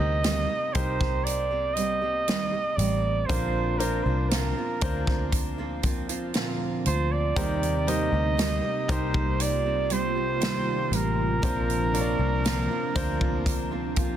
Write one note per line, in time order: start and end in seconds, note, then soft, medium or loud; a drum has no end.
0.00 0.46 D2 medium
0.00 0.71 C3 medium
0.00 0.23 A#3 soft
0.00 0.23 C4 soft
0.00 0.75 D#4 medium
0.00 0.23 G4 soft
0.00 0.75 G4 medium
0.00 0.75 A#4 medium
0.00 0.75 C5 medium
0.00 0.75 D#5 loud
0.23 0.49 D#3 medium
0.23 0.49 G3 medium
0.23 0.49 A#3 medium
0.23 0.49 C4 medium
0.23 0.48 G4 medium
0.23 snare loud
0.23 closed hi-hat medium
0.49 1.00 A#3 soft
0.49 0.99 C4 soft
0.49 0.98 G4 soft
0.74 2.74 C2 loud
0.74 2.68 D#4 medium
0.74 2.68 G4 medium
0.74 2.68 A#4 medium
0.74 1.25 C5 loud
0.74 2.68 C5 medium
0.74 kick loud
0.74 closed hi-hat medium
0.99 1.51 A#3 soft
0.99 1.50 C4 soft
0.99 1.49 G4 medium
0.99 kick loud
0.99 snare soft
1.24 1.75 D5 loud
1.24 closed hi-hat medium
1.50 1.75 A#3 soft
1.50 1.76 C4 soft
1.50 1.76 G4 medium
1.73 2.01 G3 medium
1.73 2.02 A#3 medium
1.73 2.77 D#5 loud
1.73 closed hi-hat medium
1.78 2.01 C4 medium
1.78 2.00 G4 medium
2.02 2.28 A#3 soft
2.02 2.28 C4 soft
2.02 2.27 G4 medium
2.28 2.53 D#3 medium
2.28 2.53 G3 medium
2.28 2.53 A#3 medium
2.28 2.53 C4 medium
2.28 2.51 G4 medium
2.28 snare loud
2.28 closed hi-hat medium
2.53 2.78 A#3 soft
2.53 2.79 C4 soft
2.53 2.78 G4 medium
2.76 3.25 A1 medium
2.76 3.29 G3 medium
2.76 3.29 A#3 medium
2.76 3.27 D5 loud
2.76 closed hi-hat medium
2.80 3.29 C4 medium
2.80 3.30 G4 medium
3.26 4.01 A#1 medium
3.26 3.80 A#2 medium
3.26 4.78 A#2 medium
3.26 3.80 D3 medium
3.26 3.78 F3 medium
3.26 3.79 A#3 medium
3.26 3.77 D4 medium
3.26 3.77 F4 medium
3.26 3.77 A#4 medium
3.26 3.80 C5 loud
3.26 3.78 C5 medium
3.26 kick loud
3.30 3.80 C4 medium
3.30 3.81 F4 loud
3.30 closed hi-hat medium
3.79 4.05 F3 medium
3.79 4.06 A#3 medium
3.79 4.05 C4 medium
3.79 4.76 D4 medium
3.79 4.76 F4 medium
3.79 4.05 F4 medium
3.79 4.05 A#4 medium
3.79 4.76 A#4 medium
3.79 4.76 C5 medium
3.79 closed hi-hat medium
4.03 4.53 C2 medium
4.03 4.31 C4 medium
4.03 4.31 F4 medium
4.03 4.31 C5 medium
4.07 4.31 F3 soft
4.07 4.31 A#3 soft
4.29 4.56 A#2 medium
4.29 4.57 D3 medium
4.29 4.57 F3 medium
4.29 4.57 A#3 medium
4.29 4.56 C4 medium
4.29 4.55 F4 loud
4.29 5.32 A#4 medium
4.29 snare loud
4.29 closed hi-hat loud
4.57 5.08 F3 soft
4.57 5.08 A#3 medium
4.57 5.07 C4 soft
4.57 5.07 F4 medium
4.81 6.81 D2 loud
4.81 6.75 D4 medium
4.81 6.75 F4 medium
4.81 6.75 A#4 medium
4.81 6.75 C5 medium
4.81 kick loud
4.81 closed hi-hat medium
5.07 5.59 F3 soft
5.07 5.58 A#3 soft
5.07 5.58 C4 medium
5.07 5.57 F4 medium
5.07 kick loud
5.07 snare soft
5.32 kick medium
5.32 closed hi-hat loud
5.58 5.82 F3 medium
5.58 5.83 A#3 medium
5.58 5.83 C4 medium
5.58 5.83 F4 medium
5.83 6.08 F3 medium
5.83 6.09 A#3 medium
5.83 6.08 C4 medium
5.83 6.08 F4 medium
5.83 kick medium
5.83 closed hi-hat medium
6.09 6.34 F3 medium
6.09 6.34 A#3 medium
6.09 6.35 C4 medium
6.09 6.34 F4 medium
6.09 closed hi-hat medium
6.34 6.85 A#2 loud
6.34 6.85 D3 medium
6.34 6.84 F3 loud
6.34 6.85 A#3 medium
6.34 6.86 C4 loud
6.34 6.86 F4 loud
6.34 snare loud
6.34 closed hi-hat medium
6.86 7.33 D2 loud
6.86 7.36 F3 medium
6.86 7.36 A#3 medium
6.86 7.37 C4 medium
6.86 7.37 F4 medium
6.86 7.14 C5 loud
6.86 closed hi-hat medium
7.12 7.90 D5 loud
7.36 8.08 D#2 loud
7.36 8.85 C3 medium
7.36 14.17 C3 medium
7.36 7.87 D#3 medium
7.36 11.39 G3 medium
7.36 7.85 G3 medium
7.36 11.39 A#3 medium
7.36 7.86 A#3 medium
7.36 7.87 C4 medium
7.36 9.37 D#4 medium
7.36 7.84 D#4 medium
7.36 7.84 G4 medium
7.36 7.88 G4 loud
7.36 7.84 A#4 medium
7.36 7.85 C5 medium
7.36 kick loud
7.36 closed hi-hat medium
7.63 closed hi-hat medium
7.86 8.12 G3 medium
7.86 8.12 A#3 medium
7.86 8.12 C4 medium
7.86 8.84 D#4 medium
7.86 8.84 G4 medium
7.86 8.11 G4 medium
7.86 8.84 A#4 medium
7.86 8.84 C5 medium
7.86 8.93 D#5 loud
7.86 closed hi-hat medium
8.12 8.59 D2 loud
8.12 8.37 A#3 medium
8.12 8.38 C4 medium
8.12 8.38 G4 medium
8.37 8.63 D#3 medium
8.37 8.63 G3 medium
8.37 8.63 A#3 loud
8.37 8.62 C4 loud
8.37 8.61 G4 medium
8.37 snare loud
8.37 closed hi-hat loud
8.62 9.14 A#3 medium
8.62 9.13 C4 medium
8.62 9.12 G4 medium
8.88 10.88 C2 loud
8.88 10.81 D#4 medium
8.88 10.82 G4 medium
8.88 10.82 A#4 medium
8.88 10.82 C5 medium
8.88 9.43 C5 loud
8.88 kick loud
8.88 closed hi-hat medium
9.13 9.65 A#3 soft
9.13 9.65 C4 soft
9.13 9.63 G4 medium
9.13 kick loud
9.40 11.41 F4 loud
9.40 9.94 D5 loud
9.40 closed hi-hat loud
9.64 9.89 A#3 medium
9.64 9.90 C4 medium
9.64 9.90 G4 medium
9.90 10.15 G3 medium
9.90 10.16 A#3 medium
9.90 10.15 C4 medium
9.90 10.14 G4 medium
9.90 10.96 C5 loud
9.90 closed hi-hat medium
10.15 10.40 A#3 soft
10.15 10.41 C4 medium
10.15 10.41 G4 medium
10.40 10.92 D#3 medium
10.40 10.90 G3 medium
10.40 10.91 A#3 loud
10.40 10.92 C4 medium
10.40 10.92 G4 loud
10.40 snare loud
10.40 closed hi-hat medium
10.91 11.39 A1 loud
10.91 11.42 G3 medium
10.91 11.42 A#3 medium
10.91 11.42 C4 medium
10.91 11.43 G4 medium
10.91 14.17 A#4 loud
10.91 closed hi-hat loud
11.42 12.15 A#1 loud
11.42 11.93 A#2 medium
11.42 12.91 A#2 medium
11.42 11.93 D3 medium
11.42 11.92 F3 medium
11.42 14.17 F3 medium
11.42 11.93 A#3 medium
11.42 14.17 A#3 medium
11.42 11.94 C4 loud
11.42 11.91 D4 medium
11.42 14.17 D4 medium
11.42 11.91 F4 medium
11.42 11.94 F4 loud
11.42 11.91 A#4 medium
11.42 11.91 C5 medium
11.42 kick loud
11.42 closed hi-hat medium
11.70 closed hi-hat medium
11.93 12.19 F3 medium
11.93 12.19 A#3 medium
11.93 12.18 C4 medium
11.93 12.90 D4 medium
11.93 12.90 F4 medium
11.93 12.17 F4 medium
11.93 12.91 A#4 medium
11.93 12.00 C#5 medium
11.93 closed hi-hat medium
12.01 12.94 D5 medium
12.19 12.66 C2 medium
12.19 12.44 F3 soft
12.19 12.44 A#3 soft
12.19 12.45 C4 medium
12.19 12.44 F4 medium
12.44 12.70 A#2 medium
12.44 12.70 D3 loud
12.44 12.70 F3 loud
12.44 12.70 A#3 loud
12.44 12.70 C4 loud
12.44 12.69 F4 loud
12.44 snare loud
12.44 closed hi-hat loud
12.70 13.22 F3 medium
12.70 13.21 A#3 medium
12.70 13.20 C4 medium
12.70 13.19 F4 medium
12.95 14.17 D2 loud
12.95 14.17 D4 medium
12.95 14.17 F4 medium
12.95 14.17 A#4 medium
12.95 14.17 C5 loud
12.95 kick loud
12.95 closed hi-hat medium
13.20 13.72 F3 soft
13.20 13.71 A#3 medium
13.20 13.71 C4 soft
13.20 13.70 F4 medium
13.20 kick loud
13.46 kick medium
13.46 closed hi-hat medium
13.71 13.95 F3 medium
13.71 13.96 A#3 medium
13.71 13.96 C4 medium
13.71 13.97 F4 medium
13.96 14.17 F3 medium
13.96 14.17 A#3 medium
13.96 14.17 C4 medium
13.96 14.17 F4 medium
13.96 kick medium
13.96 closed hi-hat medium